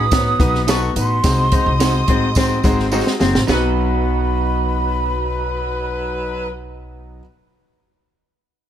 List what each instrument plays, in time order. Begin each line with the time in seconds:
Already playing: upright bass A1, string section B4 B5, flute D#6
0.11 clean electric guitar B3, grand piano D#4 F#4 C#5, kick, snare, closed hi-hat, tambourine
0.39 upright bass B1, grand piano D#4 F#4 B4, kick, closed hi-hat, tambourine
0.55 snare
0.67 clean electric guitar B3 D#4 F#4 B4, grand piano D#4 F#4 A4, flute C#6, snare, closed hi-hat, tambourine
0.96 upright bass A1, grand piano D#4 F#4 B4, flute C6, closed hi-hat, tambourine
1.24 upright bass C2, grand piano G#3 C4 D#4 F#4 C5, string section D#5 D#6, kick, snare, closed hi-hat, tambourine
1.52 grand piano G#3 C4 D#4 F#4 C5, clean electric guitar D#4, kick, closed hi-hat, tambourine
1.66 upright bass C2
1.80 grand piano G#3 C4 D#4 F#4 C5, clean electric guitar D#4 F#4 C5, snare, closed hi-hat, tambourine
2.08 upright bass A1, grand piano G#3 C4 D#4 F#4 C5, clean electric guitar C4, kick, closed hi-hat, tambourine
2.35 grand piano G#3 C4 D#4 F#4 C5, clean electric guitar C4, kick, snare, closed hi-hat, tambourine
2.63 upright bass G#1, grand piano G#3 C4 D#4 F#4 C5, kick, closed hi-hat, tambourine
2.80 snare
2.92 grand piano G#3 C4 D#4 F#4 C5, clean electric guitar D#4 F#4 C5, tambourine
3.07 snare
3.19 upright bass F#1, grand piano G#3 C4 D#4 F#4 C5, clean electric guitar C4, snare, tambourine
3.35 upright bass A1, snare
3.46 upright bass B1, grand piano F#3 B3 D#4, horn section F#3 D#4 B4, clean electric guitar B3 D#4 F#4, string section F#4 D#5 B5, flute B5, snare, tambourine
3.50 grand piano B4, clean electric guitar B4